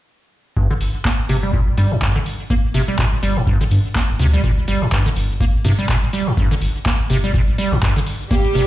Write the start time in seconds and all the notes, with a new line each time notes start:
0.57 G1 G2, kick
0.70 D3
0.81 G1, open hi-hat
1.05 A#3, kick, clap
1.29 G1 C3, open hi-hat
1.43 G3
1.53 A#2, kick
1.77 G2 G3, open hi-hat
1.91 G2
2.02 G2, kick, clap
2.16 D3
2.26 open hi-hat
2.50 G1 A#3, kick
2.74 G1 C3, open hi-hat
2.88 G3
2.99 A#2, kick, clap
3.23 G1 G3, open hi-hat
3.36 G2
3.47 G2, kick
3.61 D3
3.71 G2, open hi-hat
3.95 A#3, kick, clap
4.09 G1
4.19 D2 C3, open hi-hat
4.33 G3
4.44 G1 A#2, kick
4.68 G1 G3, open hi-hat
4.82 G2
4.92 G2, kick, clap
5.06 D3
5.16 G1, open hi-hat
5.40 A#3, kick
5.65 G2 C3, open hi-hat
5.78 G3
5.89 A#2, kick, clap
6.13 G3, open hi-hat
6.27 G2
6.37 G1 G2, kick
6.51 D3
6.61 G1, open hi-hat
6.86 A#3, kick, clap
7.10 G1 C3, open hi-hat
7.24 G3
7.34 A#2, kick
7.58 G3, open hi-hat
7.72 A#1 G2
7.82 G2, kick, clap
7.96 D3
8.07 open hi-hat
8.31 G1 G3 A#3 G4, kick, closed hi-hat
8.45 closed hi-hat
8.55 G1 C3, open hi-hat